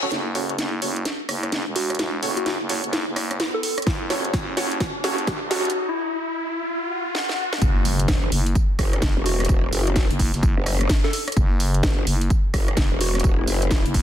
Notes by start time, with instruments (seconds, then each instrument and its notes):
Already playing: reverse cymbal
0.03 synth stab C#4 F#4 A4 C#5, closed hi-hat
0.12 fm bass F#1, snare, closed hi-hat, riser
0.35 synth stab C#4 F#4 A4 C#5, open hi-hat
0.49 closed hi-hat
0.58 fm bass F#1, snare, closed hi-hat
0.82 fm bass F#1, synth stab C#4 F#4 A4 C#5, open hi-hat
0.96 closed hi-hat
1.05 snare, closed hi-hat
1.29 fm bass F#1, cross-stick, open hi-hat
1.43 cross-stick, closed hi-hat
1.52 fm bass F#1, snare, closed hi-hat
1.67 fm bass E1
1.76 soft synth lead F#4, open hi-hat
1.90 cross-stick, closed hi-hat
1.95 closed hi-hat
1.99 fm bass E1, snare, closed hi-hat
2.23 fm bass F#1, synth stab C#4 F#4 A4 C#5, open hi-hat
2.37 soft synth lead F#4, closed hi-hat
2.46 snare, closed hi-hat
2.61 fm bass F#1
2.69 synth stab C#4 F#4 A4 C#5, open hi-hat
2.84 fm bass F#1, closed hi-hat
2.93 snare, closed hi-hat
3.07 fm bass F#1
3.16 cross-stick, open hi-hat
3.31 cross-stick, closed hi-hat
3.40 snare, closed hi-hat
3.54 soft synth lead A4
3.63 soft synth lead A4, open hi-hat
3.78 cross-stick, closed hi-hat
3.82 closed hi-hat
3.87 fm bass F#1, kick, snare, closed hi-hat
4.10 synth stab C#4 F#4 A4 C#5, snare, open hi-hat
4.25 closed hi-hat
4.34 fm bass F#1, kick, snare, closed hi-hat
4.57 fm bass F#1, synth stab C#4 F#4 A4 C#5, snare, open hi-hat
4.71 closed hi-hat
4.80 kick, snare, closed hi-hat
5.04 fm bass F#1, synth stab C#4 F#4 A4 C#5, snare, open hi-hat
5.18 closed hi-hat
5.27 fm bass F#1, kick, snare, closed hi-hat
5.42 fm bass E1
5.51 synth stab C#4 F#4 A4 C#5, soft synth lead F#4, snare, open hi-hat
5.65 closed hi-hat
5.70 closed hi-hat
5.89 soft synth lead E4
6.68 swell
7.15 snare
7.29 snare
7.53 snare
7.62 fm bass F#1, kick, closed hi-hat, tambourine, impact
7.85 open hi-hat, tambourine
8.00 closed hi-hat
8.08 wobble bass F#1, kick, snare, closed hi-hat, tambourine
8.32 fm bass F#1, open hi-hat, tambourine
8.46 closed hi-hat
8.55 kick, closed hi-hat, tambourine
8.79 wobble bass F#1, kick, cross-stick, open hi-hat, tambourine
8.93 cross-stick, closed hi-hat
9.02 fm bass F#1, kick, snare, closed hi-hat, tambourine
9.17 wobble bass E1
9.26 soft synth lead F#4, open hi-hat, tambourine
9.40 cross-stick, snare, closed hi-hat
9.45 closed hi-hat
9.49 wobble bass E1, kick, tambourine
9.73 wobble bass F#1, open hi-hat, tambourine
9.87 soft synth lead F#4, closed hi-hat
9.96 kick, snare, closed hi-hat, tambourine
10.11 fm bass F#1, closed hi-hat
10.19 kick, open hi-hat, tambourine
10.34 fm bass F#1, snare, closed hi-hat
10.43 kick, closed hi-hat, tambourine
10.57 wobble bass F#1
10.66 cross-stick, open hi-hat, tambourine
10.81 cross-stick, closed hi-hat
10.89 kick, snare, closed hi-hat, tambourine
11.04 soft synth lead A4, snare
11.13 soft synth lead A4, open hi-hat, tambourine
11.28 cross-stick, closed hi-hat
11.32 closed hi-hat
11.37 fm bass F#1, kick, closed hi-hat, tambourine
11.60 open hi-hat, tambourine
11.74 closed hi-hat
11.83 wobble bass F#1, kick, snare, closed hi-hat, tambourine
12.07 fm bass F#1, open hi-hat, tambourine
12.21 closed hi-hat
12.30 kick, closed hi-hat, tambourine
12.54 wobble bass F#1, kick, cross-stick, open hi-hat, tambourine
12.68 cross-stick, closed hi-hat
12.77 fm bass F#1, kick, snare, closed hi-hat, tambourine
12.92 wobble bass E1
13.01 soft synth lead F#4, open hi-hat, tambourine
13.15 cross-stick, snare, closed hi-hat
13.20 closed hi-hat
13.24 wobble bass E1, kick, closed hi-hat, tambourine
13.39 soft synth lead E4
13.48 wobble bass F#1, open hi-hat, tambourine
13.62 closed hi-hat
13.71 kick, snare, closed hi-hat, tambourine
13.85 fm bass F#1, closed hi-hat
13.94 kick, open hi-hat, tambourine